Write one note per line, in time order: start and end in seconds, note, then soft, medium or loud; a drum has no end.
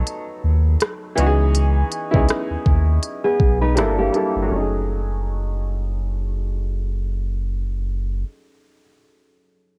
0.00 1.19 F#3 medium
0.00 1.20 A3 medium
0.00 1.17 B3 medium
0.00 1.19 D#4 medium
0.00 1.19 A4 medium
0.07 closed hi-hat medium
0.44 0.76 D#2 medium
0.81 cross-stick loud
0.81 closed hi-hat medium
1.16 1.83 C#2 loud
1.16 1.91 E3 medium
1.16 1.91 B3 medium
1.16 1.92 C#4 medium
1.16 1.92 D#4 medium
1.16 closed hi-hat medium
1.20 1.26 F#4 medium
1.27 1.96 G#4 medium
1.55 closed hi-hat medium
1.92 closed hi-hat medium
2.11 2.28 C#2 medium
2.11 3.02 B3 medium
2.11 3.02 C#4 medium
2.11 3.03 D#4 medium
2.11 3.01 E4 medium
2.11 kick medium
2.16 3.03 G#4 medium
2.29 cross-stick loud
2.29 closed hi-hat medium
2.51 2.57 D#2 soft
2.66 2.99 D#2 medium
2.66 kick medium
3.03 closed hi-hat medium
3.24 3.60 B3 medium
3.24 3.60 G#4 medium
3.40 3.79 B1 loud
3.40 kick medium
3.61 3.76 D#4 medium
3.61 3.76 B4 medium
3.75 4.10 G1 loud
3.75 4.07 G3 medium
3.75 4.07 A#3 medium
3.75 4.08 D4 medium
3.75 3.98 D4 medium
3.75 4.08 E4 medium
3.75 3.97 A#4 medium
3.75 cross-stick medium
3.75 closed hi-hat medium
3.79 4.09 A4 medium
3.98 4.49 A#3 medium
3.98 4.48 G4 medium
4.12 4.38 G3 medium
4.12 4.39 A#3 medium
4.12 4.39 D4 medium
4.12 4.40 E4 medium
4.12 closed hi-hat medium
4.16 4.40 A4 medium
4.36 4.49 G1 medium
4.42 8.82 F#3 medium
4.47 8.86 A3 medium
4.51 8.23 F#1 loud
4.51 8.91 C#4 medium
4.55 8.95 D#4 medium
4.60 8.98 G#4 medium